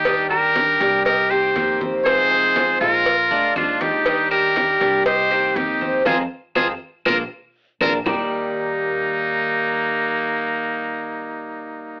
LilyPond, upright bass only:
\new Staff \with { instrumentName = "Upright bass" } { \clef bass \time 4/4 \key ees \major \tempo 4 = 120 ees,4. c,4. f,4~ | f,4. bes,,4 d,8 ees,4~ | ees,4. c,4. f,4 | f,8 r8 f,8 r8 bes,,8 r4 bes,,8 |
ees,1~ | ees,1 | }